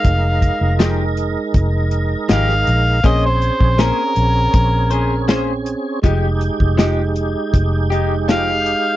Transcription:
<<
  \new Staff \with { instrumentName = "Harmonica" } { \time 4/4 \key f \minor \tempo 4 = 80 f''4 r2 f''4 | ees''16 c''8. bes'2 r4 | r2. f''4 | }
  \new Staff \with { instrumentName = "Clean electric guitar" } { \time 4/4 \key f \minor r4 <f aes ees' g'>8 r4. <f aes ees' g'>8 r8 | <bes des' aes' c''>8 r8 <bes des' aes' c''>8 r4 <des' aes' c''>8 <bes des' aes' c''>8 r8 | <f aes ees' g'>8 r8 <f aes ees' g'>8 r4 <aes ees' g'>8 <f aes ees' g'>8 r8 | }
  \new Staff \with { instrumentName = "Tonewheel organ" } { \time 4/4 \key f \minor <aes ees' bes'>1 | <c' des' aes'>1 | <aes ees' g'>1 | }
  \new Staff \with { instrumentName = "Fingered electric bass" } { \clef bass \time 4/4 \key f \minor f,,8. f,,4~ f,,16 f,,4 aes,,8 bes,,8 | bes,,8. bes,,8 r16 bes,,8 bes,,2 | f,,8. f,,4~ f,,16 f,,2 | }
  \new DrumStaff \with { instrumentName = "Drums" } \drummode { \time 4/4 <hh bd>8 <hh bd>8 <hh sn>8 hh8 <hh bd>8 hh8 <hh sn>16 sn16 hh8 | <hh bd>8 hh16 bd16 <hh sn>8 hh8 <hh bd>8 hh8 <hh sn>8 hh8 | <hh bd>8 hh16 bd16 <hh sn>8 hh8 <hh bd>8 hh8 <hh sn>8 hh8 | }
>>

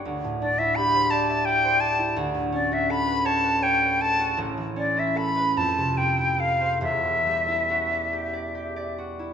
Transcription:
<<
  \new Staff \with { instrumentName = "Flute" } { \time 6/8 \key e \dorian \tempo 4. = 53 r8 d''16 e''16 b''8 a''8 g''8 a''8 | r8 d''16 e''16 b''8 a''8 g''8 a''8 | r8 d''16 e''16 b''8 a''8 g''8 f''8 | e''2~ e''8 r8 | }
  \new Staff \with { instrumentName = "Harp" } { \time 6/8 \key e \dorian <d, d' d''>16 a,16 d'16 e'16 g'16 c''16 d''16 e''16 d''16 c''16 g'16 e'16 | d,16 a,16 cis'16 fis'16 a'16 b'16 cis''16 b'16 cis''16 b'16 a'16 fis'16 | <a,, a,>16 e16 cis'16 e'16 a'16 b'16 f,16 c16 c'16 e'16 a'16 c''16 | <e,, e,>16 b,16 g16 e'16 fis'16 d''16 g'16 d''16 g'16 d''16 fis'16 e'16 | }
>>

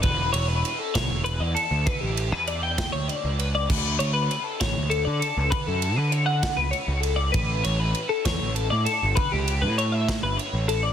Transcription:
<<
  \new Staff \with { instrumentName = "Clean electric guitar" } { \time 6/8 \key d \major \tempo 4. = 66 b'8 cis''16 b'8 a'16 cis''8 b'16 d''16 a'8 | b'16 g'8 b'16 d''16 g''8 cis''16 d''8 b'16 d''16 | b'8 cis''16 b'8 a'16 cis''8 a'16 d''16 a'8 | b'16 a'8 b'16 cis''16 fis''8 b'16 cis''8 a'16 d''16 |
b'8 cis''16 b'8 a'16 cis''8 a'16 d''16 a'8 | b'16 g'8 b'16 cis''16 e''8 b'16 cis''8 a'16 d''16 | }
  \new Staff \with { instrumentName = "Picked electric bass" } { \clef bass \time 6/8 \key d \major e,,8 e,,8 r8 b,,16 e,,8 e,16 r16 d,16 | r16 a,,8 e,4 d,16 r16 cis,8. | d,8 d,8 r8 a,,16 d,8 d16 r16 cis,16 | r16 fis,8 d4 cis,16 r16 cis,8. |
a,,8 a,,8 r8 e,16 a,,8 a,16 r16 g,,16 | r16 cis,8 a,4 g,,16 r16 a,,8. | }
  \new DrumStaff \with { instrumentName = "Drums" } \drummode { \time 6/8 <bd cymr>8 cymr8 cymr8 <bd cymr sn>8 cymr8 cymr8 | <bd cymr>8 cymr8 cymr8 <bd cymr sn>8 cymr8 cymr8 | <cymc bd>8 cymr8 cymr8 <bd cymr sn>8 cymr8 cymr8 | <bd cymr>8 cymr8 cymr8 <bd cymr sn>8 cymr8 cymr8 |
<bd cymr>8 cymr8 cymr8 <bd cymr sn>8 cymr8 cymr8 | <bd cymr>8 cymr8 cymr8 <bd cymr sn>8 cymr8 cymr8 | }
>>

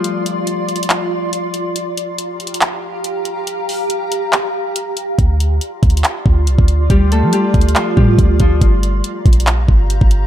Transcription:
<<
  \new Staff \with { instrumentName = "Ambient pad" } { \time 4/4 \key d \minor \tempo 4 = 140 <f' d'' c'''>1 | <g' f'' bes''>1~ | <g' f'' bes''>1 | <f' d'' c'''>1~ |
<f' d'' c'''>1 | <g' f'' bes''>1 | }
  \new Staff \with { instrumentName = "Harp" } { \time 4/4 \key d \minor r1 | r1 | r1 | r1 |
<g g'>8 <a a'>8 <g g'>4 <f f'>8 <g g'>4 <f f'>8 | r1 | }
  \new Staff \with { instrumentName = "808-style bass" } { \clef bass \time 4/4 \key d \minor r1 | r1 | r1 | d,4 r8 d,8 r8 d,8 c,16 d,8. |
d,8. f16 r8 d,8 r8 a,8 d,8 d,8 | g,,4 r8 bes,,4 g,,8. g,,8. | }
  \new DrumStaff \with { instrumentName = "Drums" } \drummode { \time 4/4 hh8 hh8 \tuplet 3/2 { hh16 r16 r16 hh16 hh16 hh16 } <hc hh>4 hh8 hh8 | hh8 hh8 \tuplet 3/2 { hh16 r16 r16 hh16 hh16 hh16 } <hc hh>4 hh8 hh8 | hh8 hho8 hh8 hh8 <hc hh>4 hh8 hh8 | <hh bd>8 hh8 \tuplet 3/2 { hh16 r16 r16 <hh bd>16 hh16 hh16 } <hc hh>8 bd8 hh16 bd16 hh8 |
<hh bd>8 hh8 \tuplet 3/2 { hh16 r16 r16 <hh bd>16 hh16 hh16 } <hc hh>8 bd8 <hh bd>8 <hh bd>8 | <hh bd>8 hh8 \tuplet 3/2 { hh16 r16 r16 <hh bd>16 hh16 hh16 } <hc hh>8 bd8 hh16 bd16 hh8 | }
>>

